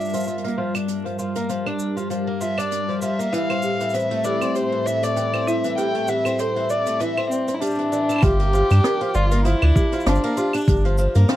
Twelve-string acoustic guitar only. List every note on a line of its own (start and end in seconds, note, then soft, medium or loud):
0.00 0.12 D4 medium
0.14 0.26 F3 medium
0.27 0.43 F3 medium
0.44 0.56 A#3 medium
0.58 0.73 F3 medium
0.75 1.04 D4 medium
1.05 1.17 F3 medium
1.19 1.35 F3 medium
1.36 1.48 A#3 medium
1.49 1.65 F3 medium
1.66 1.95 D4 medium
1.97 2.09 F3 medium
2.10 2.27 F3 medium
2.27 2.40 A#3 medium
2.41 2.56 F3 medium
2.58 2.87 D4 medium
2.89 3.01 F3 medium
3.02 3.19 F3 medium
3.19 3.31 A#3 medium
3.33 3.48 E3 medium
3.50 3.79 C4 medium
3.81 3.93 E3 medium
3.94 4.10 E3 medium
4.11 4.23 A3 medium
4.25 4.40 E3 medium
4.42 4.71 C4 medium
4.72 4.85 E3 medium
4.86 5.02 E3 medium
5.03 5.15 A3 medium
5.16 5.32 E3 medium
5.34 5.63 C4 medium
5.64 5.76 E3 medium
5.78 5.94 E3 medium
5.95 6.07 A3 medium
6.08 6.24 E3 medium
6.26 6.55 C4 medium
6.56 6.68 E3 medium
6.70 6.86 E3 medium
6.87 6.99 A3 medium
7.00 7.16 E3 medium
7.17 7.30 C4 medium
7.48 7.60 C4 medium
7.61 7.77 G3 medium
7.79 7.91 E3 medium
7.92 8.08 E3 medium
8.09 8.21 E4 medium
8.23 8.39 F3 medium
8.40 8.52 A#3 medium
8.53 8.69 F3 medium
8.70 8.99 D4 medium
9.01 9.13 F3 medium
9.15 9.31 F3 medium
9.32 9.44 A#3 loud
9.45 9.61 F3 medium
9.62 9.91 D4 loud
9.93 10.05 F3 medium
10.06 10.23 F3 medium
10.24 10.36 A#3 loud
10.37 10.53 F3 loud
10.54 10.83 D4 loud
10.85 10.97 F3 medium
10.98 11.15 F3 medium
11.15 11.28 A#3 loud
11.29 11.36 F3 loud